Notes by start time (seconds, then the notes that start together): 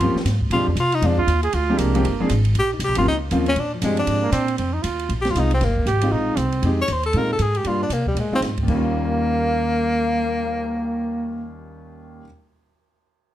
Already playing: F4
0.00 G2 F3 A#3 C4 C#4 G4, ride
0.15 muted upright bass stroke, snare
0.25 G#2, snare, hi-hat pedal, ride
0.41 kick
0.50 A#2 F3 G#3 C4 D4 F4 G4, ride
0.59 G#2
0.68 F2 D4
0.75 C3, hi-hat pedal, ride
0.80 F4
0.92 D#4, ride
1.02 F2 F3 G#3 C4 D4 F4, ride
1.06 D4
1.18 F4, kick
1.27 D#2, hi-hat pedal, ride
1.43 G#4, ride
1.53 D2 F4, ride
1.69 F3 G#3 C4 D4 G4
1.78 C2 A#3, hi-hat pedal, ride
1.95 F3 G#3 C4 D4 G4, ride
2.04 G1, ride
2.20 F3 G#3 C4 D4 G#4
2.29 G#1, hi-hat pedal, ride
2.45 ride
2.55 A#1 G4, ride
2.73 D#4
2.79 C2, hi-hat pedal, ride
2.84 G4
2.88 A#1
2.95 G1 F3 A#3 C4 C#4 F4 G4, ride
3.06 C#2 D#4
3.31 D#2 F3 A#3 C4 C#4 F4, hi-hat pedal, ride
3.46 C#4, ride
3.56 A#2 D4, ride
3.74 F3
3.82 G2 F3 G#3 C4 D4 G4, hi-hat pedal, ride
3.97 D4, ride
4.07 G#2, ride
4.23 A#3
4.32 A#2 C4, hi-hat pedal, ride
4.48 ride
4.58 F2 C4, ride
4.73 D#4
4.83 D#2 F4, hi-hat pedal, ride
4.99 ride
5.09 A#1, ride
5.21 G4, snare, ride
5.31 F4
5.35 C2 G#3 C4 D#4 F4, hi-hat pedal, ride
5.39 D#4
5.51 C4, ride
5.61 G1 A#3, snare, ride
5.77 kick
5.86 G#1 G4, hi-hat pedal, ride
6.01 G#3 C4 D#4 F4, ride
6.11 A#1 D#4
6.37 C2 C4, hi-hat pedal, ride
6.52 ride
6.62 F2 G#3 C4 D#4 G4, ride
6.81 C#5
6.88 D#2, hi-hat pedal, ride
6.92 C5
7.03 A4, ride
7.13 A#2 G#3 C4 D#4 F4, ride
7.18 A#4
7.32 A4
7.39 G#2 G#4, hi-hat pedal, ride
7.55 G4, ride
7.64 G2 G3 A#3 D4 F4, ride
7.82 D4
7.89 C3 A#3, hi-hat pedal, ride
8.07 G3, kick
8.15 A#2, ride
8.19 G#3
8.31 G#3 C4 D#4 F4, muted upright bass stroke
8.41 G#2, snare, hi-hat pedal, ride
8.57 kick, ride
8.63 D#2 D#3
8.68 D#2 G3 A#3, kick, crash
8.72 C#4 F4
8.84 cymbal swell